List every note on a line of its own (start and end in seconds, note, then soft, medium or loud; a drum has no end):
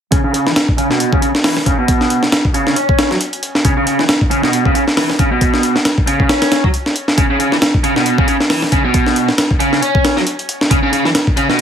0.12 0.20 C#3 medium
0.12 kick loud
0.12 closed hi-hat medium
0.24 0.33 C#3 medium
0.34 0.45 C#3 medium
0.34 closed hi-hat medium
0.46 0.50 E3 medium
0.46 snare soft
0.56 snare loud
0.56 closed hi-hat medium
0.68 kick medium
0.78 0.89 C#3 medium
0.78 closed hi-hat medium
0.90 1.11 B2 medium
0.90 snare soft
1.00 closed hi-hat medium
1.12 1.21 C#3 medium
1.12 kick medium
1.22 1.30 C#3 medium
1.22 closed hi-hat medium
1.35 snare soft
1.44 1.56 E3 medium
1.44 snare loud
1.44 open hi-hat medium
1.57 snare soft
1.66 1.77 C#3 medium
1.66 kick medium
1.66 closed hi-hat medium
1.78 2.21 B2 medium
1.88 kick loud
1.88 closed hi-hat medium
2.01 snare soft
2.10 closed hi-hat medium
2.23 snare soft
2.32 snare loud
2.32 closed hi-hat medium
2.45 kick medium
2.54 2.75 C#3 medium
2.54 closed hi-hat medium
2.67 snare soft
2.76 3.10 C#4 medium
2.76 closed hi-hat medium
2.89 kick medium
2.99 snare loud
2.99 closed hi-hat medium
3.11 3.15 F#3 medium
3.11 snare soft
3.21 closed hi-hat medium
3.33 closed hi-hat soft
3.43 closed hi-hat medium
3.55 snare soft
3.65 3.73 C#3 medium
3.65 kick loud
3.65 closed hi-hat medium
3.77 3.85 C#3 medium
3.87 3.98 C#3 medium
3.87 closed hi-hat medium
3.99 4.03 E3 medium
3.99 snare soft
4.09 snare loud
4.09 closed hi-hat medium
4.21 kick medium
4.31 4.42 C#3 medium
4.31 closed hi-hat medium
4.43 4.64 B2 medium
4.43 snare soft
4.53 closed hi-hat medium
4.65 4.74 C#3 medium
4.65 kick medium
4.75 4.83 C#3 medium
4.75 closed hi-hat medium
4.88 snare soft
4.97 5.09 E3 medium
4.97 snare loud
4.97 open hi-hat medium
5.10 snare soft
5.19 5.30 C#3 loud
5.19 kick medium
5.19 closed hi-hat medium
5.31 5.74 B2 medium
5.41 kick loud
5.41 closed hi-hat medium
5.54 snare soft
5.63 closed hi-hat medium
5.76 snare soft
5.85 snare loud
5.85 closed hi-hat medium
5.98 kick medium
6.07 6.28 C#3 medium
6.07 closed hi-hat medium
6.20 kick medium
6.29 6.63 C#4 medium
6.29 snare medium
6.29 closed hi-hat medium
6.42 snare loud
6.42 closed hi-hat medium
6.52 snare medium
6.52 closed hi-hat medium
6.64 6.68 F#3 medium
6.64 kick medium
6.74 closed hi-hat medium
6.86 snare soft
6.96 closed hi-hat medium
7.08 snare soft
7.18 7.26 C#3 medium
7.18 kick loud
7.18 closed hi-hat medium
7.30 7.39 C#3 loud
7.40 7.51 C#3 medium
7.40 closed hi-hat medium
7.52 7.56 E3 medium
7.52 snare soft
7.62 snare loud
7.62 closed hi-hat medium
7.74 kick medium
7.84 7.95 C#3 medium
7.84 closed hi-hat medium
7.96 8.17 B2 loud
7.96 snare soft
8.06 closed hi-hat medium
8.18 8.27 C#3 medium
8.18 kick medium
8.28 8.36 C#3 medium
8.28 closed hi-hat medium
8.40 snare soft
8.50 8.62 E3 medium
8.50 snare loud
8.50 open hi-hat medium
8.62 snare soft
8.72 8.83 C#3 medium
8.72 kick medium
8.72 closed hi-hat medium
8.84 9.27 B2 medium
8.94 kick loud
8.94 closed hi-hat medium
9.06 snare soft
9.16 closed hi-hat medium
9.29 snare soft
9.38 snare loud
9.38 closed hi-hat medium
9.51 kick medium
9.60 9.81 C#3 medium
9.60 closed hi-hat medium
9.73 snare soft
9.82 10.15 C#4 medium
9.82 closed hi-hat medium
9.95 kick medium
10.05 snare loud
10.05 closed hi-hat medium
10.17 10.21 F#3 medium
10.17 snare soft
10.27 closed hi-hat medium
10.39 closed hi-hat soft
10.49 closed hi-hat medium
10.61 snare soft
10.71 10.79 C#3 medium
10.71 kick loud
10.71 closed hi-hat medium
10.83 10.92 C#3 medium
10.93 11.04 C#3 medium
10.93 closed hi-hat medium
11.05 11.09 E3 loud
11.05 snare soft
11.15 snare loud
11.15 closed hi-hat medium
11.27 kick medium
11.37 11.48 C#3 medium
11.37 closed hi-hat medium
11.49 11.61 B2 loud
11.49 snare soft